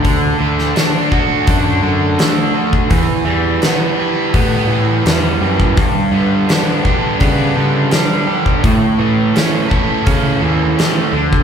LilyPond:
<<
  \new Staff \with { instrumentName = "Overdriven electric guitar" } { \time 4/4 \key a \mixolydian \tempo 4 = 84 d8 a8 d'8 fis'8 d'8 d8 d'8 fis'8 | e,8 g8 b8 g'8 b8 e8 b8 g'8 | g,8 b8 d'8 g'8 d'8 g8 d'8 g'8 | a,8 a8 cis'8 a'8 cis'8 e8 cis'8 d8 | }
  \new Staff \with { instrumentName = "Overdriven electric guitar" } { \clef bass \time 4/4 \key a \mixolydian d8 d8 d'8 fis'8 d'8 d8 a8 d8 | e8 e8 b8 e'8 b8 e8 g8 e8 | g,8 d8 b8 d'8 b8 d8 g8 d8 | a,8 e8 cis'8 e'8 cis'8 e8 a8 d8 | }
  \new Staff \with { instrumentName = "Picked electric bass" } { \clef bass \time 4/4 \key a \mixolydian d,8 d,8 r4 fis,8 fis,8 r4 | e,16 r16 e,8 r4 a,8 a,8 e,8 fis,8 | g,16 r16 g,8 r4 cis8 cis8 r4 | a,16 r16 a,8 r4 cis8 ees,8 r8 d,8 | }
  \new DrumStaff \with { instrumentName = "Drums" } \drummode { \time 4/4 <hho bd>8. sn16 <hho sn>8 bd8 <hho bd>4 <hho sn>8. bd16 | <hho bd>4 <hho sn>4 <hho bd>4 <hho sn>8. bd16 | <hho bd>4 <hho sn>8 bd8 <hho bd>4 <hho sn>8. bd16 | <hho bd>4 <hho sn>8 bd8 <hho bd>4 <hho sn>8. bd16 | }
>>